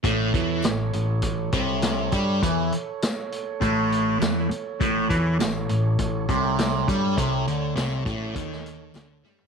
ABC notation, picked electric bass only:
X:1
M:4/4
L:1/8
Q:1/4=101
K:Amix
V:1 name="Picked electric bass" clef=bass
A,,, E,, A,,, A,,, A,,, =C,,2 G,, | E,, z3 A,,,2 E,, z | A,,, E,, A,,, A,,, A,,, =C,,2 G,, | =C,, D,, C,, A,,, ^D,,2 =D,, G,, |]